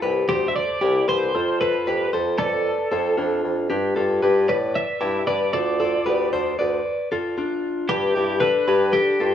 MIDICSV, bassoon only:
0, 0, Header, 1, 2, 480
1, 0, Start_track
1, 0, Tempo, 524476
1, 1467, Time_signature, 4, 2, 24, 8
1, 8553, End_track
2, 0, Start_track
2, 0, Title_t, "Bassoon"
2, 0, Program_c, 0, 70
2, 32, Note_on_c, 0, 36, 81
2, 226, Note_off_c, 0, 36, 0
2, 277, Note_on_c, 0, 38, 84
2, 568, Note_off_c, 0, 38, 0
2, 757, Note_on_c, 0, 36, 103
2, 950, Note_off_c, 0, 36, 0
2, 1000, Note_on_c, 0, 36, 93
2, 1191, Note_off_c, 0, 36, 0
2, 1230, Note_on_c, 0, 41, 85
2, 1623, Note_off_c, 0, 41, 0
2, 1709, Note_on_c, 0, 41, 87
2, 1906, Note_off_c, 0, 41, 0
2, 1952, Note_on_c, 0, 41, 94
2, 2147, Note_off_c, 0, 41, 0
2, 2184, Note_on_c, 0, 41, 81
2, 2482, Note_off_c, 0, 41, 0
2, 2666, Note_on_c, 0, 41, 106
2, 2864, Note_off_c, 0, 41, 0
2, 2906, Note_on_c, 0, 41, 109
2, 3105, Note_off_c, 0, 41, 0
2, 3147, Note_on_c, 0, 41, 92
2, 3345, Note_off_c, 0, 41, 0
2, 3386, Note_on_c, 0, 43, 96
2, 3585, Note_off_c, 0, 43, 0
2, 3624, Note_on_c, 0, 43, 89
2, 3824, Note_off_c, 0, 43, 0
2, 3866, Note_on_c, 0, 43, 106
2, 4065, Note_off_c, 0, 43, 0
2, 4103, Note_on_c, 0, 45, 86
2, 4401, Note_off_c, 0, 45, 0
2, 4579, Note_on_c, 0, 43, 108
2, 4780, Note_off_c, 0, 43, 0
2, 4829, Note_on_c, 0, 43, 89
2, 5026, Note_off_c, 0, 43, 0
2, 5070, Note_on_c, 0, 38, 95
2, 5463, Note_off_c, 0, 38, 0
2, 5548, Note_on_c, 0, 38, 96
2, 5746, Note_off_c, 0, 38, 0
2, 5787, Note_on_c, 0, 38, 90
2, 5985, Note_off_c, 0, 38, 0
2, 6037, Note_on_c, 0, 38, 96
2, 6230, Note_off_c, 0, 38, 0
2, 7231, Note_on_c, 0, 43, 105
2, 7426, Note_off_c, 0, 43, 0
2, 7470, Note_on_c, 0, 43, 88
2, 7764, Note_off_c, 0, 43, 0
2, 7940, Note_on_c, 0, 43, 109
2, 8237, Note_off_c, 0, 43, 0
2, 8422, Note_on_c, 0, 43, 91
2, 8553, Note_off_c, 0, 43, 0
2, 8553, End_track
0, 0, End_of_file